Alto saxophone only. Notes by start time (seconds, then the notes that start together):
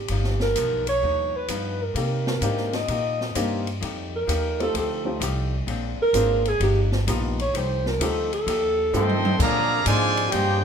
Already playing: G4
0.42 A#4
0.89 C#5
1.36 B4
1.82 A#4
1.97 A#4
2.75 D#5
4.15 A#4
4.62 A4
4.78 A4
6.02 A#4
6.49 G#4
6.63 G4
7.41 C#5
7.56 C5
7.88 A#4
8.04 A4
8.34 A4